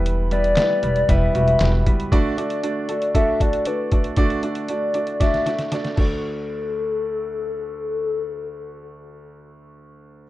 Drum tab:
CC |----------------|----------------|--------------x-|----------------|
HH |x-xxx-xxx-xxx-xx|x-xxx-xxx-xxx-xx|xxxxx-xxxxxxxx--|----------------|
CP |----x-------x---|----------------|----------------|----------------|
SD |----o-------o---|----------------|--------oooooo--|----------------|
BD |--------o-----o-|o-------o-o---o-|o-------o-----o-|----------------|

CC |----------------|
HH |----------------|
CP |----------------|
SD |----------------|
BD |----------------|